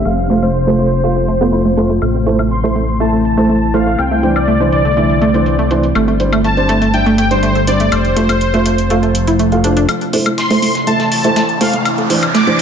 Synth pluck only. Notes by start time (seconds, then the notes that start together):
0.05 A3
0.30 A3
0.42 A3
0.67 A3
0.79 A3
1.03 A3
1.16 A3
1.28 A3
1.41 B3
1.53 E4
1.65 A3
1.77 A3
1.90 A3
2.02 A3
2.26 A3
2.39 A3
2.64 A3
2.76 A3
3.00 A3
3.13 A3
3.37 A3
3.49 A3
3.74 A3
3.87 A3
4.11 A3
4.23 A3
4.48 A3
4.60 A3
4.85 A3
4.97 A3
5.22 A3
5.34 A3
5.59 A3
5.71 A3
5.95 A3
6.08 A3
6.33 A3
6.44 A3
6.69 A3
6.82 A3
7.06 A3
7.18 A3
7.43 A3
7.55 A3
7.80 A3
7.92 A3
8.16 A3
8.29 A3
8.54 A3
8.66 A3
8.90 A3
9.03 A3
9.28 E4
9.39 A3
9.64 D4
9.77 D4
9.89 A3
10.13 A3
10.26 A3
10.50 A3
10.62 A3
10.87 A3
11.00 A3
11.24 A3
11.36 A3
11.61 A3
11.73 A3
11.98 A3
12.10 A3
12.35 A3
12.47 A3